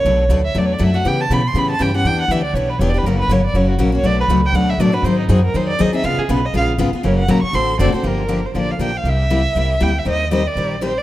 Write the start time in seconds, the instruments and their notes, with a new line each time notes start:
Already playing: violin C#5
0.05 upright bass B1, steel-string acoustic guitar B2 F#3 A3 D4 F#4
0.29 upright bass D2, steel-string acoustic guitar B2 F#3 A3 D4 F#4
0.45 violin E5
0.55 upright bass E2, steel-string acoustic guitar B2 F#3 A3 D4 F#4, violin D5
0.66 violin C#5
0.73 violin D5
0.79 upright bass F#2, steel-string acoustic guitar B2 F#3 A3 D4 F#4
0.83 violin E5
0.94 steel-string acoustic guitar A3 D4 F#4, violin F#5
1.05 steel-string acoustic guitar C#3 E3 B3 C#4 G4, upright bass C#3, violin G5
1.21 violin A5
1.30 upright bass B2, steel-string acoustic guitar C#3 E3 B3 C#4 G4, violin B5
1.47 violin C6
1.54 upright bass A2, steel-string acoustic guitar C#3 E3 B3 C#4 G4
1.59 violin B5
1.71 violin A5
1.79 upright bass G2, steel-string acoustic guitar C#3 E3 B3 C#4 G4, violin G5
1.94 steel-string acoustic guitar B3 C#4 G4, violin F#5
2.04 upright bass E2, steel-string acoustic guitar E3 B3 D4 G4, violin G5
2.21 violin F#5
2.28 upright bass D2, steel-string acoustic guitar E3 B3 D4, violin E5
2.32 steel-string acoustic guitar G4
2.44 violin D5
2.53 upright bass B1, steel-string acoustic guitar E3 B3 D4 G4, violin C#5
2.69 violin B4
2.79 upright bass E1, steel-string acoustic guitar E3 B3 D4 G4, violin C#5
2.89 violin D5
2.94 steel-string acoustic guitar B3 D4 G4
2.98 violin B4
3.03 upright bass F#1, steel-string acoustic guitar C#3 F#3 A#3 C#4, violin A#4
3.08 steel-string acoustic guitar F#4
3.20 violin B4
3.28 upright bass G1, steel-string acoustic guitar C#3 F#3 A#3 C#4 F#4
3.32 violin C#5
3.46 violin D5
3.54 upright bass F#1, steel-string acoustic guitar C#3 F#3 A#3 C#4 F#4, violin C#5
3.70 violin F#4
3.78 upright bass A#1, steel-string acoustic guitar C#3 F#3 A#3 C#4 F#4, violin A#4
3.92 steel-string acoustic guitar A#3 C#4 F#4, violin C#5
4.03 upright bass B1, steel-string acoustic guitar B2 F#3 A3 D4 F#4 B4, violin D5
4.20 violin B4
4.28 upright bass C#2, steel-string acoustic guitar B2 F#3 A3 D4 F#4 B4
4.46 violin G5
4.52 upright bass D2, steel-string acoustic guitar B2 F#3 A3 D4 F#4 B4, violin F#5
4.70 violin E5
4.78 upright bass A2, steel-string acoustic guitar B2 F#3 A3 D4 F#4 B4, violin D5
4.92 steel-string acoustic guitar A3 D4 F#4, violin B4
5.03 upright bass G#2, steel-string acoustic guitar D#3 F#3 C4 D#4 G#4, violin C5
5.20 violin D#4
5.29 upright bass F#2, steel-string acoustic guitar D#3 F#3 C4 D#4 G#4, violin F#4
5.45 violin A#4
5.54 upright bass F2, steel-string acoustic guitar D#3 F#3 C4 D#4 G#4, violin C5
5.69 violin D5
5.79 upright bass D#2, steel-string acoustic guitar D#3 F#3 C4 D#4 G#4, violin D#5
5.93 steel-string acoustic guitar C4 D#4 G#4, violin E5
6.03 upright bass C#2, steel-string acoustic guitar C#3 G#3 B3 F4 G#4, violin F5
6.18 violin G#4, muted upright bass stroke
6.29 upright bass B1, steel-string acoustic guitar C#3 G#3 B3 F4 G#4, violin B4
6.46 violin D#5
6.54 upright bass A#1, steel-string acoustic guitar C#3 G#3 B3 F4 G#4, violin F5
6.78 upright bass G#1, steel-string acoustic guitar C#3 G#3 B3 F4 G#4
6.92 steel-string acoustic guitar B3 F4 G#4, muted upright bass stroke
7.03 upright bass F#1, steel-string acoustic guitar C#3 F#3 A#3 C#4 F#4 A#4, violin C#5
7.19 violin F#5
7.28 upright bass A#1, steel-string acoustic guitar C#3 F#3 A#3 C#4 F#4 A#4, violin A#5
7.42 violin C#6, muted upright bass stroke
7.53 upright bass A1, steel-string acoustic guitar D3 A3 C4 F#4 A4, violin C6
7.79 upright bass F#1, steel-string acoustic guitar D3 A3 C4 F#4 A4, violin D5
7.92 steel-string acoustic guitar C4 F#4 A4, violin C5, muted upright bass stroke
8.03 upright bass G1, steel-string acoustic guitar D3 F3 A#3 D4 G4, violin A#4
8.28 steel-string acoustic guitar D3 F3 A#3 D4 G4
8.46 violin C5
8.54 upright bass A1, steel-string acoustic guitar D3 F3 A#3 D4 G4, violin D5
8.71 violin F5
8.79 upright bass A#1, steel-string acoustic guitar D3 F3 A#3 D4 G4
8.83 violin G5
8.97 violin F5
9.04 upright bass C2, steel-string acoustic guitar C3 G3 A#3 E4 G4
9.09 violin E5
9.30 steel-string acoustic guitar C3 G3 A#3 E4 G4
9.55 upright bass C2, steel-string acoustic guitar C3 G3 A#3 E4 G4
9.80 upright bass D2, steel-string acoustic guitar C3 G3 A#3 E4 G4, violin G5
9.99 violin E5
10.05 upright bass D#2, steel-string acoustic guitar D#3 G3 C4 G4 A#4 C5
10.10 violin D#5
10.31 steel-string acoustic guitar D#3 G3 C4 G4 A#4 C5, violin D#5
10.47 violin D5
10.55 upright bass A#1, steel-string acoustic guitar D#3 G3 C4 G4 A#4 C5
10.81 steel-string acoustic guitar D#3 G3 C4 G4 A#4 C5, violin C5
10.98 violin D5